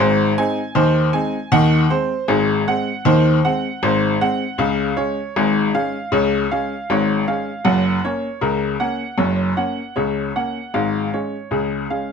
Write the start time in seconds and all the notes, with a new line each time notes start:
0.00 G#1 G#2 C5
0.38 G#3 C4 D#4 G#5
0.75 D#2 D#3 C5
1.13 G#3 C4 D#4 G#5
1.52 D#2 D#3 F#5
1.90 G#3 C4 C5
2.28 G#1 G#2 G#4
2.68 G#3 C4 F#5
3.05 D#2 D#3 C5
3.45 G#3 C4 F#5
3.83 G#1 G#2 C5
4.21 G#3 C4 F#5
4.58 C#2 C#3 F5
4.97 G#3 C#4 C#5
5.36 G#1 G#2 G#4
5.74 G#3 C#4 F5
6.12 C#2 C#3 C#5
6.51 G#3 C#4 F5
6.90 G#1 G#2 C#5
7.27 G#3 C#4 F5
7.65 F#1 F#2 F#5
8.05 A#3 C#4 C#5
8.41 C#2 C#3 A#4
8.80 A#3 C#4 F#5
9.18 F#1 F#2 C#5
9.57 A#3 C#4 F#5
9.96 C#2 C#3 C#5
10.36 A#3 C#4 F#5
10.74 G#1 G#2 F5
11.14 G#3 C#4 C#5
11.51 C#2 C#3 G#4
11.90 G#3 C#4 F5